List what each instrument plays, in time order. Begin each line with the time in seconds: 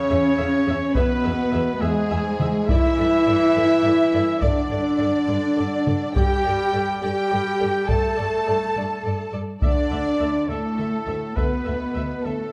Already playing: trombone section C#3, cello section C#4, french horn section C#4, violin section C#5, trumpet C#5, flute C#5
0.09 double bass section E2, viola section G#4 E5
0.37 double bass section E2, viola section G#4 E5
0.67 double bass section E2, viola section G#4 E5
0.94 double bass section E2, trombone section B2, french horn section B3, cello section B3, viola section G#4 E5, violin section B4, trumpet B4, flute B4, taiko
1.24 double bass section E2, viola section G#4 E5
1.53 double bass section E2, viola section G#4 E5
1.81 double bass section E2, trombone section G#2, french horn section G#3, cello section G#3, violin section G#4, trumpet G#4, viola section G#4 E5, flute G#4
2.10 double bass section E2, viola section G#4 E5
2.39 double bass section E2, viola section G#4 E5, taiko mid
2.68 double bass section G2, trombone section E3, cello section E4, french horn section E4, viola section A4 D5, trumpet E5, violin section E5, flute E5, taiko
2.97 double bass section G2, viola section A4 D5
3.26 double bass section G2, viola section A4 D5
3.55 double bass section G2, viola section A4 D5
3.83 double bass section G2, viola section A4 D5
4.12 double bass section G2, viola section A4 D5
4.40 double bass section G2, trombone section D3, french horn section D4, cello section D4, viola section A4 D5, trumpet D5, violin section D5, flute D5, taiko
4.69 double bass section G2, viola section A4 D5
4.98 double bass section G2, viola section A4 D5
5.27 double bass section G2, viola section A4 D5
5.56 double bass section G2, viola section A4 D5
5.86 double bass section G2, viola section A4 D5, taiko mid
6.15 double bass section G2, trombone section G3, french horn section G4, cello section G4, viola section A4 D5, violin section G5, trumpet G5, flute G5, taiko
6.44 double bass section G2, viola section A4 D5
6.73 double bass section G2, viola section A4 D5
7.01 double bass section G2, trombone section G3, french horn section G4, cello section G4, viola section A4 D5, violin section G5, flute G5, trumpet G5
7.30 double bass section G2, viola section A4 D5
7.60 double bass section G2, viola section A4 D5
7.87 double bass section G2, trombone section A3, viola section A4 D5, french horn section A4, cello section A4, violin section A5, trumpet A5, flute A5, taiko
8.17 double bass section G2, viola section A4 D5
8.46 double bass section G2, viola section A4 D5
8.75 double bass section G2, viola section A4 D5
9.04 double bass section G2, viola section A4 D5
9.32 double bass section G2, viola section A4 D5
9.61 double bass section D2, trombone section D3, french horn section D4, cello section D4, viola section A4 E5, violin section D5, trumpet D5, flute D5, taiko
9.90 double bass section D2, viola section A4 E5
10.20 double bass section D2, viola section A4 E5
10.49 double bass section D2, trombone section A2, french horn section A3, cello section A3, trumpet A4, violin section A4, viola section A4 E5, flute A4
10.78 double bass section D2, viola section A4 E5
11.06 double bass section D2, viola section A4 E5
11.36 double bass section D2, trombone section B2, french horn section B3, cello section B3, viola section A4 E5, trumpet B4, flute B4, violin section B4, taiko
11.65 double bass section D2, viola section A4 E5
11.95 double bass section D2, viola section A4 E5
12.24 double bass section D2, trombone section A2, cello section A3, french horn section A3, viola section A4 E5, trumpet A4, violin section A4, flute A4